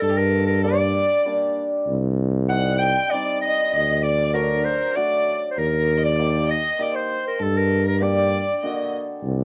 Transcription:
0.01 tuba G2, clarinet A4, violin A4
0.10 violin G4
0.17 violin A4, clarinet A#4
0.47 clarinet A#4
0.64 hammered dulcimer G3 A#3 D4, clarinet D5, violin D5
1.25 hammered dulcimer G3 A#3 D4
1.88 tuba C2
2.49 hammered dulcimer G3 C4 D#4, clarinet F#5, violin F#5
2.79 clarinet G5, violin G5
3.11 hammered dulcimer G3 C4 D#4, clarinet D5, violin D5
3.42 clarinet D#5, violin D#5
3.74 tuba D2, clarinet D#5, violin D#5
4.03 clarinet D5, violin D5
4.33 hammered dulcimer F#3 D4 F#4, clarinet A#4, violin A#4
4.65 clarinet C5
4.96 hammered dulcimer A3 D4 F#4, violin D5, clarinet D5
5.51 clarinet C5
5.57 tuba D#2, violin A#4, clarinet A#4
5.98 violin D#5
6.03 violin D5, clarinet D5
6.19 hammered dulcimer A#3 D#4 G4
6.48 violin D#5, clarinet D#5
6.76 hammered dulcimer A#3 D#4 G4, violin D5 D#5
6.82 clarinet D5
6.93 violin C5, clarinet C5
7.27 clarinet A#4
7.39 tuba G2, violin A4, clarinet A4
7.57 clarinet A#4
7.86 violin A#4, clarinet A#4
8.00 hammered dulcimer A#3 D4 G4, violin D5, clarinet D5
8.62 hammered dulcimer D3 A#3 F#4, violin D#5
9.24 tuba C2

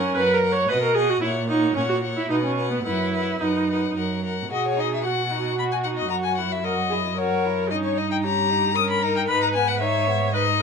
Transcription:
Already playing: viola C#4, violin A#4 F#5
0.15 cello F#2, violin A#4 F#5, viola B4
0.34 viola A#4
0.42 violin A#4 F#5
0.52 viola C#5
0.69 cello B2, viola B4, violin D#5 F#5
0.82 viola A#4
0.95 viola G#4, violin D#5 F#5
1.09 viola F#4
1.21 cello A#2, viola E4, violin C#5 F#5
1.48 viola D#4, violin C#5 F#5
1.75 cello A#2, viola C#4, violin C#5 F#5
1.89 viola F#4
2.02 violin C#5 F#5
2.17 viola E4
2.29 cello B2, viola D#4, violin B4 F#5
2.43 viola C#4
2.57 violin B4 F#5
2.71 viola B3
2.83 cello F#2, viola E4, violin B4 F#5
3.13 violin B4 F#5
3.40 cello F#2, viola D#4, violin B4 F#5
3.69 violin B4 F#5
3.94 cello F#2, violin A#4 F#5
4.24 violin A#4 F#5
4.50 cello B2, violin F#4 D#5, viola G#4
4.68 violin C#5
4.77 violin D#4 D#5
4.94 violin E5
5.03 violin F#4 F#5, viola F#4
5.31 violin D#4
5.57 violin F#4 B5
5.71 violin G#5
5.83 violin D#4 F#5
5.97 violin D#5
6.09 cello F#2, violin F#4 A#5
6.24 violin G#5
6.37 violin E4 F#5
6.51 violin E5
6.63 violin F#4 D#5, viola A#4
6.90 violin E4, viola G#4
7.16 violin F#4 C#5, viola A#4
7.45 violin E4
7.70 cello G2, violin C#4 D#5, viola D#4
7.84 violin C#5
7.97 violin D#4 D#5
8.11 violin G5
8.23 violin C#4 A#5, viola G4
8.50 violin D#4
8.75 violin C#4 D#6, viola A#4
8.90 violin B5
9.03 violin D#4 A#5
9.16 violin G5
9.28 cello G#2, violin D#4 B5, viola B4
9.42 violin A#5
9.54 violin B3 G#5
9.68 violin F#5
9.79 violin D#4 E5, viola C#5
10.07 violin B3
10.34 violin D#4 D#5, viola B4

